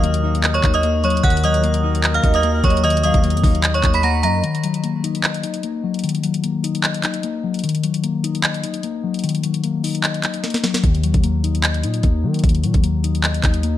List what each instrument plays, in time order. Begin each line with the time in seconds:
Already playing: 808-style bass D#2, clean electric guitar D#3 F#3, woodwind section D#3 D#4 F#4 A#4, synth bell D#5 D#6
0.04 clean electric guitar A#3, closed hi-hat
0.14 closed hi-hat
0.24 clean electric guitar D#4
0.35 closed hi-hat
0.44 clean electric guitar D#5, clap, closed hi-hat
0.54 synth bell C#5 C#6, closed hi-hat
0.64 808-style bass D#2, clean electric guitar D#4, kick, clap, closed hi-hat
0.74 synth bell D#5 D#6, closed hi-hat
0.83 clean electric guitar A#3, closed hi-hat
1.04 clean electric guitar F#3, synth bell C#5 C#6, closed hi-hat
1.10 closed hi-hat
1.17 closed hi-hat
1.23 808-style bass D#2, clean electric guitar D#3, woodwind section D#3 F#4 A#4, synth bell F#5 F#6, kick, closed hi-hat
1.30 closed hi-hat
1.37 closed hi-hat
1.44 clean electric guitar F#3, soft synth lead C#5, synth bell D#5 D#6, closed hi-hat
1.54 closed hi-hat
1.64 clean electric guitar A#3, closed hi-hat
1.74 closed hi-hat
1.84 clean electric guitar D#4
1.95 closed hi-hat
2.04 clean electric guitar D#5, clap, closed hi-hat
2.14 synth bell F5 F6, closed hi-hat
2.23 808-style bass D#2, clean electric guitar D#4, soft synth lead D#5, kick, closed hi-hat
2.34 synth bell D#5 D#6, closed hi-hat
2.43 clean electric guitar A#3, closed hi-hat
2.64 808-style bass D#2, clean electric guitar F#3, synth bell C#5 C#6, kick, closed hi-hat
2.70 closed hi-hat
2.77 closed hi-hat
2.84 clean electric guitar D#3, synth bell D#5 D#6, closed hi-hat
2.90 closed hi-hat
2.97 closed hi-hat
3.04 clean electric guitar F#3, synth bell D#5 D#6, soft synth lead F5, closed hi-hat
3.14 808-style bass D#2, kick, closed hi-hat
3.24 clean electric guitar A#3, closed hi-hat
3.30 808-style bass F2, closed hi-hat
3.37 closed hi-hat
3.44 808-style bass D#2, clean electric guitar D#4, kick, open hi-hat
3.55 closed hi-hat
3.64 clean electric guitar D#5, clap, closed hi-hat
3.74 synth bell C#5 C#6, closed hi-hat
3.84 808-style bass D#2, clean electric guitar D#4, kick, clap, closed hi-hat
3.94 synth bell B5 B6, closed hi-hat
4.03 clean electric guitar A#3, soft synth lead F#5, synth bell A#5 A#6, closed hi-hat
4.23 808-style bass F#2, clean electric guitar F#3, soft synth lead D#5, synth bell A#5 A#6, closed hi-hat
4.44 clean electric guitar D#3, closed hi-hat
4.55 closed hi-hat
4.64 clean electric guitar F#3, closed hi-hat
4.74 closed hi-hat
4.84 clean electric guitar A#3, closed hi-hat
5.04 clean electric guitar D#4, closed hi-hat
5.15 closed hi-hat
5.24 clean electric guitar D#5, clap, closed hi-hat
5.34 closed hi-hat
5.44 clean electric guitar D#4, closed hi-hat
5.54 closed hi-hat
5.63 clean electric guitar A#3, closed hi-hat
5.84 clean electric guitar F#3
5.94 closed hi-hat
5.99 closed hi-hat
6.04 clean electric guitar D#3, closed hi-hat
6.09 closed hi-hat
6.15 closed hi-hat
6.23 clean electric guitar F#3, closed hi-hat
6.34 closed hi-hat
6.44 clean electric guitar A#3, closed hi-hat
6.64 clean electric guitar D#4, closed hi-hat
6.75 closed hi-hat
6.84 clean electric guitar D#5, clap, closed hi-hat
6.94 closed hi-hat
7.03 clean electric guitar D#4, clap, closed hi-hat
7.14 closed hi-hat
7.23 clean electric guitar A#3, closed hi-hat
7.44 clean electric guitar F#3
7.54 closed hi-hat
7.59 closed hi-hat
7.63 clean electric guitar D#3, closed hi-hat
7.69 closed hi-hat
7.75 closed hi-hat
7.84 clean electric guitar F#3, closed hi-hat
7.94 closed hi-hat
8.04 clean electric guitar A#3, closed hi-hat
8.24 clean electric guitar D#4, closed hi-hat
8.35 closed hi-hat
8.44 clean electric guitar D#5, clap, closed hi-hat
8.54 closed hi-hat
8.63 clean electric guitar D#4, closed hi-hat
8.74 closed hi-hat
8.83 clean electric guitar A#3, closed hi-hat
9.04 clean electric guitar F#3
9.14 closed hi-hat
9.19 closed hi-hat
9.24 clean electric guitar D#3, closed hi-hat
9.29 closed hi-hat
9.35 closed hi-hat
9.44 clean electric guitar F#3, closed hi-hat
9.54 closed hi-hat
9.64 clean electric guitar A#3, closed hi-hat
9.84 clean electric guitar D#4, open hi-hat
9.95 closed hi-hat
10.04 clean electric guitar D#5, clap, closed hi-hat
10.14 closed hi-hat
10.23 clean electric guitar D#4, clap, closed hi-hat
10.34 closed hi-hat
10.44 clean electric guitar A#3, snare, closed hi-hat
10.50 snare, closed hi-hat
10.57 closed hi-hat
10.64 clean electric guitar F#3, snare
10.74 snare, closed hi-hat
10.84 808-style bass D#2, clean electric guitar D#3, kick, closed hi-hat
10.95 closed hi-hat
11.04 clean electric guitar F#3, closed hi-hat
11.14 808-style bass D#2, kick, closed hi-hat
11.24 clean electric guitar A#3, closed hi-hat
11.44 clean electric guitar D#4, closed hi-hat
11.55 closed hi-hat
11.64 clean electric guitar D#5, clap, closed hi-hat
11.74 closed hi-hat
11.84 808-style bass A#2, clean electric guitar D#4, closed hi-hat
11.94 closed hi-hat
12.03 808-style bass D#2, clean electric guitar A#3, kick, closed hi-hat
12.24 808-style bass D#3, clean electric guitar F#3
12.34 closed hi-hat
12.39 closed hi-hat
12.44 808-style bass D#2, clean electric guitar D#3, kick, closed hi-hat
12.49 closed hi-hat
12.55 closed hi-hat
12.63 808-style bass A#2, clean electric guitar F#3, closed hi-hat
12.74 808-style bass D#2, kick, closed hi-hat
12.84 clean electric guitar A#3, closed hi-hat
13.04 clean electric guitar D#4, closed hi-hat
13.15 closed hi-hat
13.24 clean electric guitar D#5, clap, closed hi-hat
13.34 closed hi-hat
13.44 808-style bass D#2, clean electric guitar D#4, kick, clap, closed hi-hat
13.54 closed hi-hat
13.63 clean electric guitar A#3, closed hi-hat